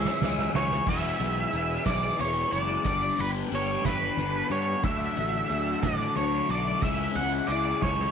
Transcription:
Already playing: C#3 E3 G#3 C#4 E4 G#4 E5
0.05 snare
0.21 C#2 C#3 E3 G#3 C#4, snare, low conga
0.38 snare
0.54 C#2 G#3 C#4 C#5, snare
0.58 E3
0.71 snare, low conga
0.86 E1 E3 G#3 B3 E4 G#4 B4 E5 G#5, kick, crash, high conga
0.91 E4
1.20 B1 B3 E4, closed hi-hat, low conga
1.24 G#3
1.53 E1 E3 G#3 B3, closed hi-hat
1.57 E4
1.85 B1 G#3 B3 E4 D5, kick, snare, closed hi-hat, high conga
2.18 E1 E3 G#3 B3 E4 C#5, closed hi-hat, low conga
2.50 F#1 G#3 B3 E4 D5, closed hi-hat
2.84 G1 G2 D3 G3 B3 D4 G4 B4 D5 G5, kick, closed hi-hat, high conga
3.18 G1 G3 B3 D4 B4, closed hi-hat, low conga
3.50 G1 D3 G3 B3 D4, closed hi-hat
3.55 C#5
3.84 G1 G3 B3 D4 B4, kick, snare, closed hi-hat, high conga
4.17 G1 D3 G3 B3, closed hi-hat, low conga
4.22 D4
4.50 G2 G3 B3 D4 C#5, closed hi-hat
4.82 D2 D3 F#3 A3 D4 F#4 A4 E5 F#5, kick, closed hi-hat, high conga
5.17 A1 F#3 A3 D4, closed hi-hat, low conga
5.50 D2 D3 F#3 A3 D4, closed hi-hat
5.82 A2 F#3 A3 D4 D5, kick, snare, closed hi-hat, high conga
6.15 D2 D3 F#3 A3 D4 C#5, closed hi-hat, low conga
6.48 B1 F#3 A3 D4 D5, closed hi-hat
6.81 C#2 C#3 G#3 C#4 E4 G#4 E5 G#5, kick, closed hi-hat, high conga
6.85 E4
7.15 C#2 G#3 C#4 E4 F#5, closed hi-hat, low conga
7.47 C#2 C#3 G#3 C#4 E4 D5, closed hi-hat
7.81 C#2 G#3 C#4 E4 C#5, kick, snare, high conga
7.99 snare

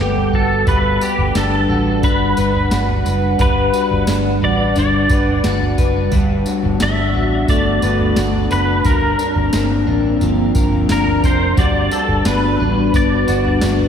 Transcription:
Already playing: G3 A4 B4 F#5
0.00 G1 B3 G4
0.16 floor tom
0.33 G1 F#4 A4, kick
0.67 G1 G3 D4 B4 F#5, kick, floor tom, tambourine
1.01 G4, tambourine
1.18 G1, floor tom
1.35 G1 D4 A4, snare, tambourine
1.69 A1 F#4, floor tom
2.03 G1 D4 B4, kick, floor tom, tambourine
2.37 G1 B4, tambourine
2.55 floor tom
2.71 G1 F#4, snare, tambourine
2.88 floor tom
3.05 F#1 B4, tambourine
3.39 G1 G3 B4, kick, floor tom, tambourine
3.74 F#4, tambourine
3.90 G1, floor tom
4.07 G1 D4, snare, tambourine
4.42 A1 F#4 D5, floor tom
4.76 G1 D4 D5, floor tom, tambourine
5.09 G1 B4, kick, tambourine
5.27 floor tom
5.44 G1 F#4, snare, tambourine
5.61 floor tom
5.78 F#1 B4, kick, tambourine
6.12 G1 G3 B3 F#4 B4, kick, floor tom, tambourine
6.46 F#4, tambourine
6.63 G1, floor tom
6.80 G1 D4 E5, snare, tambourine
7.14 A1 F#4, floor tom
7.48 G1 A3 D5, kick, floor tom, tambourine
7.82 G1 B4, tambourine
8.00 floor tom
8.16 G1 F#4, snare, tambourine
8.33 floor tom
8.51 F#1 B4, tambourine
8.84 G1 G2 A#3 C4 A#4, kick, floor tom, tambourine
9.19 D4, tambourine
9.35 G1, floor tom
9.53 G1 C4, snare, tambourine
9.87 A1 D4, floor tom
10.21 G1 F3, floor tom, tambourine
10.55 G1 A#4, kick, tambourine
10.72 floor tom
10.89 G1 D4 A#4, snare, tambourine
11.06 floor tom
11.23 F1 A#4 C5, kick, tambourine
11.57 G1 G3 F#4 B4 D5, kick, floor tom, tambourine
11.91 D4 A4, tambourine
12.08 G1, floor tom
12.25 G1 B3 B4, snare, tambourine
12.59 A1 D4, floor tom
12.93 G1 B3 D5, kick, floor tom, tambourine
13.28 G1 F#4, tambourine
13.45 floor tom
13.61 G1 D4, snare, tambourine
13.79 floor tom

